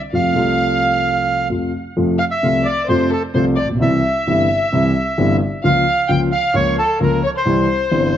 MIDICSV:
0, 0, Header, 1, 4, 480
1, 0, Start_track
1, 0, Key_signature, -1, "major"
1, 0, Tempo, 463320
1, 117, Time_signature, 4, 2, 24, 8
1, 3477, Tempo, 456621
1, 8540, End_track
2, 0, Start_track
2, 0, Title_t, "Bandoneon"
2, 0, Program_c, 0, 23
2, 153, Note_on_c, 0, 77, 71
2, 1536, Note_off_c, 0, 77, 0
2, 2277, Note_on_c, 0, 77, 87
2, 2332, Note_off_c, 0, 77, 0
2, 2392, Note_on_c, 0, 76, 86
2, 2751, Note_on_c, 0, 74, 81
2, 2765, Note_off_c, 0, 76, 0
2, 2978, Note_off_c, 0, 74, 0
2, 2995, Note_on_c, 0, 72, 68
2, 3219, Note_off_c, 0, 72, 0
2, 3235, Note_on_c, 0, 69, 67
2, 3343, Note_off_c, 0, 69, 0
2, 3466, Note_on_c, 0, 72, 58
2, 3576, Note_off_c, 0, 72, 0
2, 3716, Note_on_c, 0, 74, 70
2, 3824, Note_off_c, 0, 74, 0
2, 3964, Note_on_c, 0, 76, 72
2, 5593, Note_off_c, 0, 76, 0
2, 5887, Note_on_c, 0, 77, 82
2, 6368, Note_on_c, 0, 79, 86
2, 6372, Note_off_c, 0, 77, 0
2, 6472, Note_off_c, 0, 79, 0
2, 6594, Note_on_c, 0, 77, 85
2, 6839, Note_off_c, 0, 77, 0
2, 6839, Note_on_c, 0, 73, 86
2, 7058, Note_off_c, 0, 73, 0
2, 7082, Note_on_c, 0, 69, 81
2, 7300, Note_off_c, 0, 69, 0
2, 7340, Note_on_c, 0, 70, 64
2, 7550, Note_off_c, 0, 70, 0
2, 7583, Note_on_c, 0, 73, 70
2, 7630, Note_off_c, 0, 73, 0
2, 7698, Note_on_c, 0, 72, 70
2, 8540, Note_off_c, 0, 72, 0
2, 8540, End_track
3, 0, Start_track
3, 0, Title_t, "Violin"
3, 0, Program_c, 1, 40
3, 138, Note_on_c, 1, 77, 75
3, 1529, Note_off_c, 1, 77, 0
3, 2260, Note_on_c, 1, 77, 63
3, 2319, Note_off_c, 1, 77, 0
3, 2384, Note_on_c, 1, 76, 60
3, 2724, Note_off_c, 1, 76, 0
3, 2741, Note_on_c, 1, 74, 70
3, 2959, Note_off_c, 1, 74, 0
3, 2965, Note_on_c, 1, 72, 71
3, 3200, Note_off_c, 1, 72, 0
3, 3206, Note_on_c, 1, 69, 58
3, 3320, Note_off_c, 1, 69, 0
3, 3459, Note_on_c, 1, 72, 61
3, 3570, Note_off_c, 1, 72, 0
3, 3684, Note_on_c, 1, 74, 61
3, 3799, Note_off_c, 1, 74, 0
3, 3935, Note_on_c, 1, 76, 71
3, 5579, Note_off_c, 1, 76, 0
3, 5872, Note_on_c, 1, 77, 83
3, 6317, Note_off_c, 1, 77, 0
3, 6336, Note_on_c, 1, 79, 73
3, 6447, Note_off_c, 1, 79, 0
3, 6597, Note_on_c, 1, 77, 74
3, 6817, Note_off_c, 1, 77, 0
3, 6840, Note_on_c, 1, 73, 70
3, 7059, Note_off_c, 1, 73, 0
3, 7083, Note_on_c, 1, 69, 60
3, 7301, Note_off_c, 1, 69, 0
3, 7307, Note_on_c, 1, 70, 68
3, 7532, Note_off_c, 1, 70, 0
3, 7551, Note_on_c, 1, 73, 64
3, 7605, Note_off_c, 1, 73, 0
3, 7675, Note_on_c, 1, 72, 67
3, 8540, Note_off_c, 1, 72, 0
3, 8540, End_track
4, 0, Start_track
4, 0, Title_t, "Grand piano"
4, 0, Program_c, 2, 0
4, 133, Note_on_c, 2, 41, 44
4, 133, Note_on_c, 2, 48, 40
4, 133, Note_on_c, 2, 53, 45
4, 135, Note_on_c, 2, 57, 33
4, 135, Note_on_c, 2, 65, 38
4, 324, Note_off_c, 2, 48, 0
4, 326, Note_off_c, 2, 41, 0
4, 327, Note_off_c, 2, 53, 0
4, 327, Note_off_c, 2, 57, 0
4, 327, Note_off_c, 2, 65, 0
4, 339, Note_on_c, 2, 48, 59
4, 354, Note_on_c, 2, 53, 53
4, 355, Note_off_c, 2, 48, 0
4, 360, Note_on_c, 2, 48, 65
4, 363, Note_on_c, 2, 36, 65
4, 366, Note_on_c, 2, 57, 55
4, 385, Note_on_c, 2, 65, 63
4, 1498, Note_off_c, 2, 53, 0
4, 1501, Note_off_c, 2, 48, 0
4, 1502, Note_off_c, 2, 36, 0
4, 1503, Note_off_c, 2, 57, 0
4, 1513, Note_off_c, 2, 65, 0
4, 1547, Note_on_c, 2, 48, 37
4, 1547, Note_on_c, 2, 53, 46
4, 1549, Note_on_c, 2, 57, 31
4, 1551, Note_on_c, 2, 41, 42
4, 1554, Note_on_c, 2, 65, 41
4, 1758, Note_off_c, 2, 48, 0
4, 1758, Note_off_c, 2, 53, 0
4, 1759, Note_off_c, 2, 57, 0
4, 1760, Note_off_c, 2, 41, 0
4, 1762, Note_off_c, 2, 65, 0
4, 2034, Note_on_c, 2, 48, 57
4, 2037, Note_on_c, 2, 53, 68
4, 2037, Note_on_c, 2, 57, 53
4, 2039, Note_on_c, 2, 41, 59
4, 2041, Note_on_c, 2, 65, 59
4, 2239, Note_off_c, 2, 48, 0
4, 2241, Note_off_c, 2, 53, 0
4, 2241, Note_off_c, 2, 57, 0
4, 2242, Note_off_c, 2, 41, 0
4, 2243, Note_off_c, 2, 65, 0
4, 2516, Note_on_c, 2, 48, 62
4, 2517, Note_on_c, 2, 36, 58
4, 2517, Note_on_c, 2, 53, 43
4, 2522, Note_on_c, 2, 57, 45
4, 2524, Note_on_c, 2, 65, 62
4, 2719, Note_off_c, 2, 36, 0
4, 2719, Note_off_c, 2, 48, 0
4, 2719, Note_off_c, 2, 53, 0
4, 2721, Note_off_c, 2, 57, 0
4, 2722, Note_off_c, 2, 65, 0
4, 2985, Note_on_c, 2, 48, 63
4, 2991, Note_on_c, 2, 41, 67
4, 2992, Note_on_c, 2, 57, 55
4, 2993, Note_on_c, 2, 53, 67
4, 2994, Note_on_c, 2, 65, 67
4, 3193, Note_off_c, 2, 48, 0
4, 3196, Note_off_c, 2, 41, 0
4, 3196, Note_off_c, 2, 57, 0
4, 3197, Note_off_c, 2, 53, 0
4, 3198, Note_off_c, 2, 65, 0
4, 3461, Note_on_c, 2, 48, 65
4, 3461, Note_on_c, 2, 53, 52
4, 3466, Note_on_c, 2, 57, 59
4, 3469, Note_on_c, 2, 36, 74
4, 3470, Note_on_c, 2, 65, 68
4, 3670, Note_off_c, 2, 48, 0
4, 3670, Note_off_c, 2, 53, 0
4, 3672, Note_off_c, 2, 57, 0
4, 3674, Note_off_c, 2, 36, 0
4, 3674, Note_off_c, 2, 65, 0
4, 3766, Note_on_c, 2, 33, 37
4, 3827, Note_on_c, 2, 34, 47
4, 3831, Note_off_c, 2, 33, 0
4, 3892, Note_off_c, 2, 34, 0
4, 3899, Note_on_c, 2, 35, 59
4, 3945, Note_on_c, 2, 36, 69
4, 3945, Note_on_c, 2, 48, 71
4, 3947, Note_on_c, 2, 52, 53
4, 3952, Note_on_c, 2, 55, 51
4, 3952, Note_on_c, 2, 64, 65
4, 3957, Note_off_c, 2, 35, 0
4, 4152, Note_off_c, 2, 36, 0
4, 4153, Note_off_c, 2, 52, 0
4, 4156, Note_off_c, 2, 55, 0
4, 4156, Note_off_c, 2, 64, 0
4, 4157, Note_off_c, 2, 48, 0
4, 4438, Note_on_c, 2, 48, 62
4, 4439, Note_on_c, 2, 52, 50
4, 4440, Note_on_c, 2, 43, 64
4, 4442, Note_on_c, 2, 31, 58
4, 4443, Note_on_c, 2, 55, 56
4, 4445, Note_on_c, 2, 64, 62
4, 4637, Note_off_c, 2, 48, 0
4, 4637, Note_off_c, 2, 52, 0
4, 4638, Note_off_c, 2, 43, 0
4, 4639, Note_off_c, 2, 31, 0
4, 4639, Note_off_c, 2, 55, 0
4, 4640, Note_off_c, 2, 64, 0
4, 4916, Note_on_c, 2, 52, 56
4, 4917, Note_on_c, 2, 36, 74
4, 4917, Note_on_c, 2, 48, 77
4, 4924, Note_on_c, 2, 55, 63
4, 4927, Note_on_c, 2, 64, 68
4, 5116, Note_off_c, 2, 36, 0
4, 5116, Note_off_c, 2, 52, 0
4, 5119, Note_off_c, 2, 48, 0
4, 5120, Note_off_c, 2, 55, 0
4, 5121, Note_off_c, 2, 64, 0
4, 5391, Note_on_c, 2, 48, 62
4, 5394, Note_on_c, 2, 31, 83
4, 5396, Note_on_c, 2, 43, 77
4, 5396, Note_on_c, 2, 52, 55
4, 5396, Note_on_c, 2, 55, 59
4, 5398, Note_on_c, 2, 64, 71
4, 5593, Note_off_c, 2, 48, 0
4, 5594, Note_off_c, 2, 31, 0
4, 5595, Note_off_c, 2, 43, 0
4, 5595, Note_off_c, 2, 52, 0
4, 5595, Note_off_c, 2, 55, 0
4, 5596, Note_off_c, 2, 64, 0
4, 5876, Note_on_c, 2, 49, 80
4, 5879, Note_on_c, 2, 37, 67
4, 5879, Note_on_c, 2, 53, 57
4, 5881, Note_on_c, 2, 65, 72
4, 5882, Note_on_c, 2, 58, 57
4, 6076, Note_off_c, 2, 37, 0
4, 6076, Note_off_c, 2, 53, 0
4, 6077, Note_off_c, 2, 65, 0
4, 6078, Note_off_c, 2, 49, 0
4, 6078, Note_off_c, 2, 58, 0
4, 6351, Note_on_c, 2, 49, 65
4, 6351, Note_on_c, 2, 53, 58
4, 6352, Note_on_c, 2, 58, 48
4, 6354, Note_on_c, 2, 37, 64
4, 6356, Note_on_c, 2, 65, 67
4, 6552, Note_off_c, 2, 53, 0
4, 6553, Note_off_c, 2, 58, 0
4, 6554, Note_off_c, 2, 37, 0
4, 6555, Note_off_c, 2, 49, 0
4, 6555, Note_off_c, 2, 65, 0
4, 6823, Note_on_c, 2, 49, 80
4, 6829, Note_on_c, 2, 37, 84
4, 6832, Note_on_c, 2, 58, 63
4, 6833, Note_on_c, 2, 53, 62
4, 6834, Note_on_c, 2, 65, 69
4, 7031, Note_off_c, 2, 37, 0
4, 7032, Note_off_c, 2, 49, 0
4, 7033, Note_off_c, 2, 53, 0
4, 7033, Note_off_c, 2, 58, 0
4, 7033, Note_off_c, 2, 65, 0
4, 7307, Note_on_c, 2, 49, 77
4, 7309, Note_on_c, 2, 53, 55
4, 7310, Note_on_c, 2, 37, 75
4, 7313, Note_on_c, 2, 58, 63
4, 7316, Note_on_c, 2, 65, 69
4, 7511, Note_off_c, 2, 49, 0
4, 7512, Note_off_c, 2, 37, 0
4, 7512, Note_off_c, 2, 53, 0
4, 7513, Note_off_c, 2, 58, 0
4, 7515, Note_off_c, 2, 65, 0
4, 7788, Note_on_c, 2, 36, 79
4, 7789, Note_on_c, 2, 48, 64
4, 7791, Note_on_c, 2, 55, 57
4, 7791, Note_on_c, 2, 64, 70
4, 7794, Note_on_c, 2, 52, 62
4, 7991, Note_off_c, 2, 36, 0
4, 7992, Note_off_c, 2, 55, 0
4, 7992, Note_off_c, 2, 64, 0
4, 7993, Note_off_c, 2, 48, 0
4, 7994, Note_off_c, 2, 52, 0
4, 8265, Note_on_c, 2, 52, 50
4, 8269, Note_on_c, 2, 43, 64
4, 8271, Note_on_c, 2, 31, 65
4, 8271, Note_on_c, 2, 48, 51
4, 8271, Note_on_c, 2, 64, 58
4, 8273, Note_on_c, 2, 55, 49
4, 8473, Note_off_c, 2, 52, 0
4, 8475, Note_off_c, 2, 43, 0
4, 8475, Note_off_c, 2, 48, 0
4, 8476, Note_off_c, 2, 31, 0
4, 8476, Note_off_c, 2, 64, 0
4, 8477, Note_off_c, 2, 55, 0
4, 8540, End_track
0, 0, End_of_file